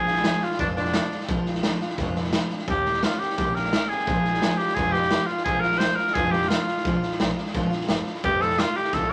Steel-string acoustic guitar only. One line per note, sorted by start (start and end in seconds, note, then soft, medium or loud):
0.07 0.24 G#3 soft
0.07 0.25 D4 medium
0.07 0.25 F4 medium
0.24 0.42 F3 medium
0.24 0.43 G#3 medium
0.24 0.42 D4 medium
0.24 0.41 F4 medium
0.42 0.59 G#3 medium
0.42 0.60 D4 medium
0.42 0.60 F4 medium
0.59 0.77 A#2 medium
0.59 0.77 F3 medium
0.59 0.78 G#3 loud
0.59 0.77 D4 medium
0.59 0.75 F4 medium
0.77 0.94 G#3 medium
0.77 0.95 D4 medium
0.77 0.94 F4 medium
0.94 1.11 F3 medium
0.94 1.12 G#3 medium
0.94 1.12 D4 medium
0.94 1.11 F4 medium
1.12 1.29 G#3 soft
1.12 1.29 D4 medium
1.12 1.29 F4 medium
1.29 1.46 A#2 medium
1.29 1.47 F3 loud
1.29 1.47 G#3 medium
1.29 1.47 D4 medium
1.29 1.47 F4 medium
1.48 1.64 G#3 soft
1.48 1.65 D4 medium
1.48 1.65 F4 medium
1.64 1.81 F3 medium
1.64 1.82 G#3 medium
1.64 1.82 D4 medium
1.64 1.80 F4 medium
1.81 1.99 G#3 medium
1.81 2.00 D4 medium
1.81 1.99 F4 medium
2.00 2.17 A#2 medium
2.00 2.17 F3 loud
2.00 2.17 G#3 loud
2.00 2.17 D4 loud
2.00 2.15 F4 medium
2.16 2.33 G#3 medium
2.16 2.34 D4 medium
2.16 2.34 F4 medium
2.33 2.51 F3 medium
2.33 2.51 G#3 medium
2.33 2.52 D4 medium
2.33 2.51 F4 medium
2.52 2.70 G#3 soft
2.52 2.70 D4 medium
2.52 2.69 F4 medium
2.70 2.87 D#3 medium
2.70 2.87 A#3 medium
2.70 2.87 C#4 medium
2.70 2.86 G4 medium
2.87 3.05 A#3 soft
2.87 3.05 C#4 medium
2.87 3.04 G4 medium
3.04 3.21 D#3 medium
3.04 3.22 A#3 medium
3.04 3.22 C#4 medium
3.04 3.21 G4 medium
3.22 3.39 A#3 medium
3.22 3.40 C#4 medium
3.22 3.39 G4 medium
3.39 3.56 D#3 medium
3.39 3.56 A#3 medium
3.39 3.56 C#4 medium
3.39 3.54 G4 loud
3.55 3.72 A#3 soft
3.55 3.74 C#4 medium
3.55 3.73 G4 medium
3.73 3.90 D#3 medium
3.73 3.90 A#3 medium
3.73 3.91 C#4 medium
3.73 3.89 G4 medium
3.91 4.09 A#3 soft
3.91 4.09 C#4 medium
3.91 4.08 G4 medium
4.08 4.25 A#2 medium
4.08 4.25 F3 medium
4.08 4.26 G#3 medium
4.08 4.26 D4 medium
4.08 4.24 F4 medium
4.25 4.43 G#3 soft
4.25 4.43 D4 soft
4.25 4.42 F4 medium
4.43 4.60 F3 medium
4.43 4.61 G#3 medium
4.43 4.61 D4 medium
4.43 4.59 F4 medium
4.61 4.77 G#3 medium
4.61 4.77 D4 medium
4.61 4.77 F4 medium
4.77 4.94 A#2 medium
4.77 4.95 F3 medium
4.77 4.95 G#3 medium
4.77 4.94 D4 medium
4.77 4.93 F4 medium
4.94 5.10 G#3 soft
4.94 5.12 D4 medium
4.94 5.12 F4 medium
5.11 5.29 F3 medium
5.11 5.29 G#3 medium
5.11 5.29 D4 medium
5.11 5.27 F4 medium
5.28 5.47 G#3 soft
5.28 5.47 D4 medium
5.28 5.46 F4 medium
5.46 5.64 A#2 medium
5.46 5.64 F3 medium
5.46 5.64 G#3 medium
5.46 5.64 D4 medium
5.46 5.63 F4 medium
5.64 5.81 G#3 soft
5.64 5.81 D4 medium
5.64 5.81 F4 medium
5.81 5.99 F3 medium
5.81 5.99 G#3 medium
5.81 5.99 D4 medium
5.81 5.98 F4 medium
5.99 6.16 G#3 medium
5.99 6.17 D4 medium
5.99 6.16 F4 medium
6.16 6.33 A#2 medium
6.16 6.34 F3 medium
6.16 6.34 G#3 medium
6.16 6.34 D4 medium
6.16 6.32 F4 medium
6.33 6.51 G#3 soft
6.33 6.51 D4 medium
6.33 6.51 F4 medium
6.51 6.68 F3 medium
6.51 6.69 G#3 medium
6.51 6.68 D4 medium
6.51 6.66 F4 medium
6.68 6.86 G#3 soft
6.68 6.86 D4 soft
6.68 6.85 F4 medium
6.86 7.03 A#2 medium
6.86 7.03 F3 medium
6.86 7.04 G#3 medium
6.86 7.03 D4 medium
6.86 7.01 F4 medium
7.02 7.19 G#3 medium
7.02 7.20 D4 medium
7.02 7.20 F4 medium
7.19 7.37 F3 medium
7.19 7.38 G#3 medium
7.19 7.38 D4 medium
7.19 7.35 F4 medium
7.36 7.54 G#3 medium
7.36 7.55 D4 medium
7.36 7.54 F4 medium
7.54 7.72 A#2 medium
7.54 7.72 F3 loud
7.54 7.72 G#3 medium
7.54 7.71 D4 loud
7.54 7.69 F4 loud
7.70 7.88 G#3 medium
7.70 7.89 D4 medium
7.70 7.89 F4 medium
7.88 8.06 F3 medium
7.88 8.07 G#3 medium
7.88 8.06 D4 medium
7.88 8.04 F4 medium
8.05 8.25 G#3 soft
8.05 8.24 D4 medium
8.05 8.23 F4 medium
8.23 8.41 F2 medium
8.23 8.42 C3 medium
8.23 8.42 D#3 medium
8.23 8.41 A3 medium
8.23 8.40 D#4 medium
8.23 8.39 F4 medium
8.40 8.57 D#3 soft
8.40 8.58 A3 soft
8.40 8.59 D#4 medium
8.40 8.58 F4 medium
8.58 8.76 D#3 medium
8.58 8.76 A3 medium
8.58 8.75 D#4 medium
8.58 8.74 F4 medium
8.75 8.93 D#3 soft
8.75 8.93 A3 medium
8.75 8.94 D#4 medium
8.75 8.93 F4 medium
8.93 9.11 F2 medium
8.93 9.11 C3 medium
8.93 9.11 D#3 medium
8.93 9.11 A3 medium
8.93 9.10 D#4 medium
8.93 9.09 F4 medium